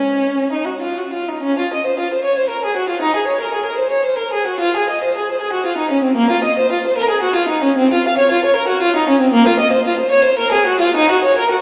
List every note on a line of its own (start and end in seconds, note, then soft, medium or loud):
0.00 0.50 C#4 medium
0.53 0.66 D#4 soft
0.65 0.80 F#4 soft
0.82 0.96 F4 soft
0.98 1.13 F#4 soft
1.14 1.28 F4 soft
1.29 1.43 D#4 soft
1.43 1.57 C#4 medium
1.59 1.72 F4 medium
1.74 1.86 D#5 medium
1.87 1.99 C5 medium
2.00 2.12 F4 soft
2.14 2.25 C5 medium
2.25 2.37 C#5 medium
2.39 2.51 C5 medium
2.50 2.63 A#4 medium
2.65 2.78 G#4 medium
2.77 2.90 F#4 medium
2.89 3.03 F4 medium
3.02 3.15 D#4 medium
3.16 3.29 G#4 medium
3.28 3.41 C#5 medium
3.41 3.55 A#4 medium
3.54 3.68 G#4 soft
3.66 3.80 A#4 medium
3.79 3.93 C5 medium
3.91 4.06 C#5 medium
4.06 4.20 C5 medium
4.19 4.34 A#4 medium
4.33 4.48 G#4 medium
4.48 4.62 F#4 medium
4.60 4.75 F4 medium
4.77 4.90 G#4 medium
4.90 5.03 D#5 medium
5.04 5.17 C5 medium
5.18 5.30 G#4 soft
5.32 5.43 C5 medium
5.42 5.54 G#4 medium
5.53 5.66 F#4 medium
5.66 5.79 F4 medium
5.78 5.92 D#4 medium
5.91 6.05 C#4 medium
6.04 6.18 C4 medium
6.17 6.31 A#3 medium
6.31 6.44 F4 medium
6.44 6.57 D#5 medium
6.59 6.71 C5 medium
6.72 6.85 F4 medium
6.87 6.98 C5 medium
6.98 7.10 A#4 medium
7.10 7.23 G#4 medium
7.23 7.36 F#4 medium
7.36 7.50 F4 medium
7.49 7.63 D#4 medium
7.64 7.78 C#4 medium
7.78 7.91 C4 medium
7.93 8.06 F4 medium
8.08 8.20 F5 medium
8.18 8.31 C#5 medium
8.32 8.44 F4 medium
8.45 8.57 C#5 medium
8.56 8.69 A#4 medium
8.68 8.82 F#4 medium
8.82 8.95 F4 medium
8.96 9.08 D#4 medium
9.09 9.21 C#4 medium
9.21 9.34 C4 medium
9.34 9.46 A#3 loud
9.48 9.60 F4 medium
9.60 9.72 D#5 medium
9.73 9.85 C5 medium
9.87 9.99 F4 medium
9.99 10.12 C5 medium
10.12 10.25 C#5 medium
10.25 10.38 C5 medium
10.39 10.53 A#4 medium
10.52 10.67 G#4 medium
10.67 10.81 F#4 medium
10.81 10.95 F4 medium
10.97 11.10 D#4 loud
11.11 11.25 F#4 medium
11.25 11.38 C#5 medium
11.38 11.51 A#4 medium
11.52 11.62 F#4 medium